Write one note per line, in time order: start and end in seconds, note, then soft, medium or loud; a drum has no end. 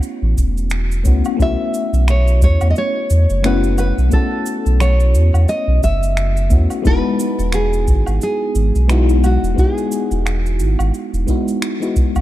0.00 1.00 A3 medium
0.00 1.01 B3 medium
0.00 1.02 C#4 medium
0.00 1.02 E4 medium
0.00 1.03 F#4 medium
0.00 cabasa medium
0.22 0.34 A1 loud
0.37 1.07 E1 loud
0.37 kick medium
0.37 cabasa medium
0.58 cabasa soft
0.70 finger snap medium
0.70 cabasa medium
0.92 cabasa soft
1.04 1.22 C#2 loud
1.04 1.35 A3 medium
1.04 1.36 B3 medium
1.04 1.36 C#4 medium
1.04 1.36 E4 medium
1.04 1.37 F#4 medium
1.04 kick loud
1.04 cabasa medium
1.25 cabasa soft
1.25 low woodblock medium
1.37 1.56 B1 loud
1.37 3.39 A3 loud
1.37 3.40 B3 medium
1.37 3.41 C#4 medium
1.37 kick loud
1.37 cabasa medium
1.41 3.41 E4 medium
1.41 3.42 F#4 loud
1.41 2.05 E5 loud
1.74 cabasa medium
1.93 2.44 B1 medium
1.93 cabasa soft
2.08 2.41 C#5 loud
2.08 finger snap loud
2.08 cabasa medium
2.08 low woodblock medium
2.28 cabasa medium
2.42 2.58 E2 medium
2.42 2.70 C#5 medium
2.42 kick loud
2.42 cabasa medium
2.61 2.73 E2 medium
2.61 cabasa medium
2.61 low woodblock medium
2.70 2.76 D#5 medium
2.76 3.47 C#5 loud
2.76 cabasa medium
3.10 3.26 E2 loud
3.10 cabasa medium
3.30 3.93 F#1 medium
3.30 cabasa medium
3.43 4.08 A3 loud
3.43 4.08 B3 medium
3.43 4.09 C#4 medium
3.43 4.09 E4 medium
3.43 4.10 F#4 loud
3.43 3.78 B4 medium
3.43 finger snap medium
3.43 cabasa medium
3.64 cabasa soft
3.78 4.13 B4 medium
3.78 cabasa medium
3.78 low woodblock medium
3.98 4.10 B1 medium
3.98 cabasa soft
4.09 6.46 A3 medium
4.09 6.47 B3 medium
4.09 6.47 C#4 medium
4.09 4.83 A4 medium
4.09 kick loud
4.09 cabasa medium
4.14 6.48 E4 medium
4.14 6.49 F#4 loud
4.46 cabasa medium
4.66 5.16 B1 medium
4.66 cabasa soft
4.80 5.49 C#5 medium
4.80 finger snap medium
4.80 cabasa medium
4.80 low woodblock medium
5.00 cabasa soft
5.15 5.31 E2 medium
5.15 cabasa medium
5.34 5.46 E2 medium
5.34 cabasa soft
5.34 low woodblock medium
5.48 5.83 D#5 loud
5.48 cabasa medium
5.68 5.80 B1 loud
5.83 6.52 F#1 loud
5.83 6.47 E5 medium
5.83 kick medium
5.83 cabasa medium
6.03 cabasa medium
6.17 finger snap medium
6.17 cabasa medium
6.37 cabasa medium
6.50 6.67 E2 medium
6.50 6.81 A3 medium
6.50 6.81 B3 medium
6.50 6.82 C#4 medium
6.50 6.82 E4 medium
6.50 6.82 F#4 medium
6.50 kick loud
6.50 cabasa medium
6.70 cabasa soft
6.70 low woodblock medium
6.82 7.01 E1 loud
6.82 8.85 G#3 loud
6.82 8.85 B3 loud
6.82 8.86 D#4 medium
6.82 kick loud
6.82 cabasa medium
6.87 8.87 E4 medium
6.87 8.88 F#4 loud
6.87 7.54 B4 loud
7.19 cabasa medium
7.39 7.89 E1 medium
7.39 cabasa medium
7.52 8.22 G#4 loud
7.52 finger snap medium
7.52 cabasa medium
7.52 low woodblock medium
7.73 cabasa soft
7.88 8.04 G#1 loud
7.88 kick loud
7.88 cabasa medium
8.06 8.19 G#1 medium
8.06 cabasa soft
8.06 low woodblock medium
8.21 9.28 G#4 medium
8.21 cabasa medium
8.55 8.72 G#1 loud
8.55 cabasa medium
8.75 9.38 B1 medium
8.75 cabasa soft
8.88 9.53 G#3 loud
8.88 9.54 B3 medium
8.88 9.54 D#4 medium
8.88 9.55 E4 medium
8.88 9.55 F#4 loud
8.88 finger snap medium
8.88 cabasa medium
9.09 cabasa medium
9.24 9.60 F#4 medium
9.24 cabasa medium
9.24 low woodblock medium
9.43 9.55 E1 loud
9.43 cabasa medium
9.54 11.24 G#3 medium
9.54 11.24 B3 medium
9.54 11.25 D#4 medium
9.54 kick loud
9.54 cabasa medium
9.59 11.26 E4 medium
9.59 11.26 F#4 loud
9.59 11.59 G#4 medium
9.78 cabasa soft
9.91 cabasa medium
10.11 10.61 E1 loud
10.11 cabasa medium
10.26 finger snap loud
10.26 cabasa medium
10.26 low woodblock medium
10.46 cabasa soft
10.59 10.76 G#1 medium
10.59 cabasa medium
10.79 10.91 G#1 medium
10.79 cabasa medium
10.79 low woodblock medium
10.94 cabasa medium
11.13 11.25 E1 medium
11.13 cabasa medium
11.27 11.76 G#3 medium
11.27 11.77 B3 medium
11.27 11.77 D#4 medium
11.27 11.77 E4 medium
11.27 11.78 F#4 medium
11.27 kick medium
11.27 cabasa medium
11.48 cabasa soft
11.62 finger snap loud
11.62 cabasa medium
11.80 12.21 G#3 medium
11.80 12.21 B3 medium
11.80 12.21 D#4 medium
11.80 12.21 E4 medium
11.80 12.21 F#4 medium
11.80 cabasa soft
11.96 kick loud
11.96 cabasa medium
12.16 12.21 B1 loud
12.16 cabasa soft
12.16 low woodblock medium